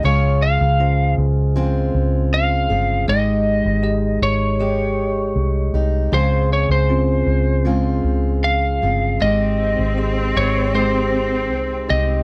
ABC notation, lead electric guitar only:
X:1
M:4/4
L:1/16
Q:1/4=78
K:Ab
V:1 name="Lead electric guitar"
d2 f4 z6 f4 | e6 d8- d2 | c2 d c8- c f4 | e6 d2 c6 e2 |]